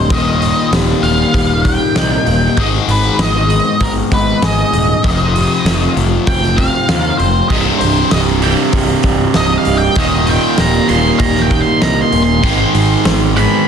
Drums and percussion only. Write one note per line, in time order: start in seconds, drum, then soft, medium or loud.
0.10 kick loud
0.10 open hi-hat medium
0.42 open hi-hat medium
0.73 snare loud
0.73 open hi-hat medium
1.04 open hi-hat soft
1.34 kick medium
1.34 open hi-hat medium
1.65 kick medium
1.65 open hi-hat medium
1.96 snare loud
1.96 open hi-hat medium
2.27 open hi-hat soft
2.57 kick loud
2.57 open hi-hat medium
2.89 open hi-hat medium
3.19 snare loud
3.19 open hi-hat medium
3.50 open hi-hat medium
3.81 kick medium
3.81 open hi-hat medium
4.12 kick medium
4.12 open hi-hat medium
4.42 snare loud
4.42 open hi-hat medium
4.73 open hi-hat medium
5.04 kick loud
5.04 open hi-hat medium
5.36 open hi-hat medium
5.66 snare loud
5.66 open hi-hat medium
5.97 open hi-hat soft
6.27 kick medium
6.27 open hi-hat medium
6.43 snare soft
6.58 kick medium
6.58 open hi-hat medium
6.89 snare loud
6.89 open hi-hat medium
7.20 open hi-hat soft
7.50 kick loud
7.50 open hi-hat medium
7.81 open hi-hat medium
8.11 snare loud
8.11 open hi-hat medium
8.42 open hi-hat medium
8.73 kick medium
8.73 open hi-hat medium
9.03 kick medium
9.03 open hi-hat medium
9.34 snare loud
9.34 open hi-hat medium
9.65 open hi-hat medium
9.96 kick loud
9.96 open hi-hat medium
10.27 open hi-hat medium
10.58 snare loud
10.58 open hi-hat medium
10.89 open hi-hat medium
11.20 kick medium
11.20 open hi-hat medium
11.36 snare soft
11.51 kick medium
11.51 open hi-hat medium
11.82 snare loud
11.82 open hi-hat medium
12.13 open hi-hat medium
12.44 kick loud
12.44 open hi-hat medium
12.75 open hi-hat medium
13.05 snare loud
13.05 open hi-hat medium
13.36 open hi-hat soft